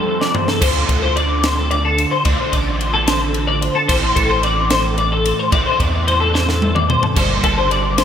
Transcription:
Already playing: F2 C3 F3 G3 A3 C4 E4 A4
0.08 F2
0.21 D5, snare
0.34 E2 C5, floor tom
0.48 A4, snare
0.60 D2 D3 A3 D4 F4 C5, kick, crash
0.89 D2 A4, kick, ride
1.02 C5
1.16 D5, ride
1.44 C5, snare, ride
1.57 A4
1.71 D5, ride
1.85 A4
1.98 ride
2.11 C5
2.25 D2 D3 A3 D4 F4 D5, kick, ride
2.39 C5
2.52 A1 D5, kick, ride
2.80 C5, ride
2.94 A4
3.07 C5, snare, ride
3.21 A4
3.34 ride
3.48 D5
3.61 C5, ride
3.75 A4
3.88 A1 A2 E3 A3 C4 E4 C5, kick, crash
4.16 A1 A4, kick, ride
4.30 C5
4.43 D5, ride
4.70 C5, snare, ride
4.85 A4
4.98 D5, ride
5.12 A4
5.25 ride
5.39 C5
5.51 A1 A2 E3 A3 C4 E4 D5, kick, ride
5.66 C5
5.80 E2 D5, kick, ride
6.08 C5, ride
6.20 A4
6.34 C5, snare
6.49 A4, snare
6.62 high tom
6.75 D5, mid tom
6.90 C5, mid tom
7.03 A4, floor tom
7.15 G1 G2 D3 G3 A#3 D4 C5, kick, crash
7.44 G1 A4, kick, ride
7.58 C5
7.71 D5, ride
7.98 C5, snare, ride

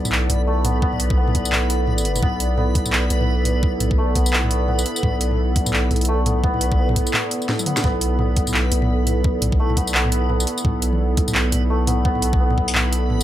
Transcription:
Already playing: B1 A3 B3 E4 A4 B4 D5
0.05 mid tom, tambourine
0.12 clap
0.30 B1, closed hi-hat, mid tom
0.33 mid tom
0.36 mid tom
0.47 A3
0.65 B3, closed hi-hat, mid tom
0.82 B1 B3, kick
0.93 mid tom
1.00 closed hi-hat
1.10 kick
1.17 B3
1.28 mid tom
1.35 B1, kick, closed hi-hat
1.45 tambourine
1.52 clap, mid tom
1.70 closed hi-hat
1.87 mid tom
1.98 tambourine
2.05 closed hi-hat
2.15 mid tom, tambourine
2.22 B1 B3, kick, mid tom
2.40 closed hi-hat
2.58 B3, mid tom
2.75 B1, kick, closed hi-hat
2.86 mid tom, tambourine
2.93 clap
3.10 B1, closed hi-hat
3.21 mid tom
3.45 closed hi-hat, mid tom
3.63 B1, kick
3.80 closed hi-hat, mid tom
3.91 kick
3.98 A3
4.15 B1 B3, kick, closed hi-hat
4.26 tambourine
4.33 B3, clap
4.44 mid tom
4.51 closed hi-hat
4.68 B3, mid tom
4.79 tambourine
4.86 closed hi-hat
4.96 tambourine
5.03 B1, kick, mid tom
5.21 closed hi-hat
5.31 mid tom
5.56 B1, kick, closed hi-hat
5.66 mid tom, tambourine
5.73 clap
5.91 B1, closed hi-hat, mid tom
5.96 closed hi-hat
6.01 closed hi-hat
6.05 A3, closed hi-hat
6.26 B3, closed hi-hat, mid tom
6.44 B1 B3, kick
6.54 mid tom
6.61 closed hi-hat
6.72 kick
6.79 B3
6.89 mid tom
6.96 kick, closed hi-hat
7.07 tambourine
7.14 clap, mid tom
7.31 closed hi-hat
7.42 tambourine
7.49 snare, mid tom
7.59 high tom, tambourine
7.66 B3, closed hi-hat, mid tom
7.77 snare, mid tom, tambourine
7.84 B1 B3 B4, kick, mid tom
8.01 closed hi-hat
8.19 B3, mid tom
8.37 B1, kick, closed hi-hat
8.47 mid tom, tambourine
8.54 clap
8.72 B1, closed hi-hat
8.82 mid tom
9.07 closed hi-hat, mid tom
9.24 B1, kick
9.42 closed hi-hat, mid tom
9.52 kick
9.59 A3
9.70 mid tom
9.77 B1 B3, kick, closed hi-hat
9.87 tambourine
9.94 B3, clap
10.05 mid tom
10.12 closed hi-hat
10.29 B3, mid tom
10.40 tambourine
10.47 closed hi-hat
10.58 tambourine
10.65 B1, kick, mid tom
10.82 closed hi-hat
10.93 mid tom
11.17 B1, kick, closed hi-hat
11.28 mid tom, tambourine
11.35 clap
11.52 B1, closed hi-hat, mid tom
11.70 A3
11.87 B3, closed hi-hat, mid tom
12.05 B1 B3, kick
12.15 mid tom
12.22 closed hi-hat
12.33 kick
12.40 B3
12.50 mid tom
12.58 B1, kick
12.68 tambourine
12.75 clap, mid tom
12.93 closed hi-hat
13.10 mid tom

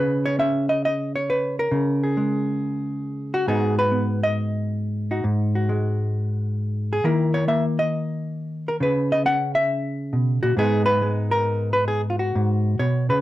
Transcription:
Already playing: C#3 B4
0.26 C#5
0.39 C#4 E5
0.69 D#5
0.85 D#5
1.16 C#5
1.30 B4
1.59 A#4
1.71 C#3
2.04 G#4
2.17 G#3
3.34 F#4
3.48 G#2 B3 D#4 F#4 G#4
3.79 B4
3.92 B3
4.23 D#5
5.11 D#4 F#4
5.24 G#2
5.55 F#4
5.69 G#3
6.93 G#4
7.04 D#3 A#3 E4 A#4
7.34 C#5
7.48 A#3 E5
7.79 D#5
8.68 A#4
8.80 C#3 B4
9.12 D#5
9.26 C#4 F#5
9.55 E5
10.13 B2
10.43 A#2 F#4
10.57 G#2 G#3 B3 D#4 G#4
10.86 B4
11.02 G#3
11.31 A#4
11.73 B4
11.88 G#4
12.10 F4
12.19 F#4
12.35 G#2
12.79 B2 C#5
13.09 C#3 B4

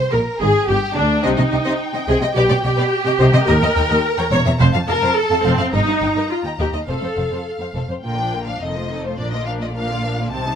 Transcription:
Already playing: C5
0.11 A#1 A#2 A#4
0.39 G#1 G#2 G#4
0.67 G1 G2 G4
0.95 D2 D4
1.24 C2 C3 D#4 C5 D#5 G5
1.37 C3 D#5
1.51 C2 C3 D#5 G5
1.65 C3 C5 D#5
1.94 C3 D#5 G5
2.07 C2 C3 G#4 C5 D#5
2.22 C3 D#5
2.36 B1 B2 G4 B4 D5
2.49 B2 D5
2.64 B1 B2 G4 D5 G5
2.77 B2 B4 D5
3.06 C3 D#5 G5
3.19 C2 C3 C5 D#5
3.33 C3 D#5
3.47 D#2 A#4 D#5 G5
3.61 D#2 D#5
3.76 D#2 D#5 G5
3.89 D#2 A#4 D#5
4.04 A#5
4.18 E2 C#5 G5
4.31 E1 E2 C#5
4.45 E2 C#5 E5
4.59 F1 F2 C5 F5 A5
4.73 F2 F5
4.87 F1 F2 A#4 F5 A5
5.02 F2 C5 F5
5.16 A4
5.30 F2 F5 A5
5.43 F1 F2 C4 C5 F5
5.58 F2 F5
5.71 G1 G2 D#4 A#4 D#5 A#5
5.87 G2 D#5
6.01 G1 G2 D#5 G5
6.15 G2 A#4 D#5
6.31 F4
6.43 D#2 D#5 G5
6.58 D#2 G4 A#4 D#5
6.73 D#2 D#5
6.87 F1 F2 A4 C5 F5
7.02 F2 C5
7.16 F1 F2 C5 F5
7.30 F2 A4 C5
7.59 F2 C5 F5
7.74 F1 F2 A4 C5
7.88 F2 C5
8.03 A#1 A#2 D3 A#3 F4 A#4 G5
8.18 F3 D4 D5
8.32 D3 A#3 F4 A#4
8.46 F3 D4 D5 F5
8.60 F1 F2 D#3 C4 D#4 A4 D#5
8.75 F3 A3 F4 C5
8.91 D#3 C4 D#4 A4
9.04 F3 A3 F4 C5
9.18 A#1 A#2 F3 D4 A#4 D5
9.32 D3 A#3 F4 D5 D#5
9.46 F3 D4 A#4 F5
9.60 D3 A#3 F4 D5 D#5
9.74 F3 D4 A#4 F5
9.89 D3 A#3 F4 D5
10.03 F3 D4 A#4
10.18 D3 A#3 F4 D5
10.31 C2 C3 D#3 C4 G4 A5
10.46 G3 D#4 C5

